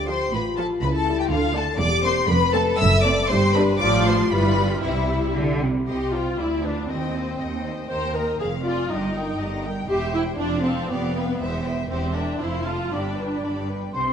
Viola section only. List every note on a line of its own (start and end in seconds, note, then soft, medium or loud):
0.08 0.26 F3 medium
0.08 0.26 F4 medium
0.58 0.76 F3 medium
0.58 0.76 F4 medium
1.07 1.25 G3 medium
1.07 1.25 E4 medium
1.55 1.74 A3 medium
1.55 1.74 D4 medium
2.04 2.24 A#3 medium
2.04 2.23 C4 medium
2.54 2.73 A3 medium
2.54 2.73 C4 medium
3.05 3.24 A3 medium
3.05 3.24 C4 medium
3.55 3.74 G3 medium
3.55 3.74 D4 medium
3.80 4.28 F3 medium
3.80 4.28 F4 medium
4.31 4.82 G3 medium
4.31 4.82 F4 medium
4.83 5.65 G3 medium
4.83 5.67 E4 medium
5.88 6.11 G4 medium
6.13 6.39 F4 medium
6.39 6.64 E4 medium
6.64 6.89 D4 medium
6.88 7.64 C4 soft
7.90 8.13 C5 medium
8.15 8.39 A#4 medium
8.40 8.48 G#4 medium
8.65 8.89 F4 medium
8.90 8.96 D#4 soft
8.96 9.03 D4 soft
9.02 9.63 D#4 medium
9.88 10.11 G4 medium
10.14 10.22 E4 medium
10.37 10.62 D4 medium
10.62 10.87 C4 medium
10.88 11.64 B3 medium
11.89 12.12 C4 medium
12.14 12.40 D4 medium
12.40 12.66 E4 medium
12.67 12.92 F4 medium
12.93 13.70 D4 medium
13.96 14.13 C4 soft